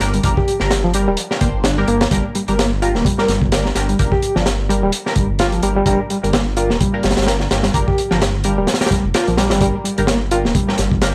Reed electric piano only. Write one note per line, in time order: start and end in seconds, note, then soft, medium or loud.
0.14 0.22 G3 medium
0.37 0.83 G4 medium
0.84 0.92 F3 loud
0.94 1.07 G3 medium
1.08 1.16 G3 medium
1.41 1.48 A#3 medium
1.65 1.76 D4 medium
1.78 1.88 G3 medium
1.88 2.00 A#3 loud
2.02 2.07 A#3 medium
2.12 2.24 G3 medium
2.35 2.42 G3 medium
2.49 2.54 G3 medium
2.58 2.69 A#3 medium
2.82 2.94 F4 medium
2.96 3.05 A#3 medium
3.06 3.51 G3 medium
3.89 3.97 G3 medium
4.12 4.34 G4 medium
4.36 4.44 F3 loud
4.69 4.82 G3 medium
4.83 4.91 G3 medium
5.16 5.29 G3 medium
5.40 5.52 F4 loud
5.53 5.61 F3 medium
5.63 5.75 G3 loud
5.76 5.84 G3 medium
5.87 5.99 G3 medium
6.10 6.17 G3 medium
6.23 6.28 G3 medium
6.33 6.44 A#3 medium
6.57 6.69 F4 medium
6.71 6.80 A#3 medium
6.80 7.26 G3 medium
7.64 7.72 G3 medium
7.88 8.10 G4 medium
8.11 8.19 F3 medium
8.45 8.57 G3 medium
8.58 8.66 G3 medium
8.92 9.04 G3 medium
9.15 9.27 F4 loud
9.28 9.36 F3 medium
9.38 9.50 G3 loud
9.52 9.60 G3 medium
9.62 9.74 G3 medium
9.85 9.91 G3 medium
9.98 10.03 G3 medium
10.08 10.19 A#3 medium
10.32 10.44 F4 loud
10.45 10.55 A#3 medium
10.55 11.01 G3 medium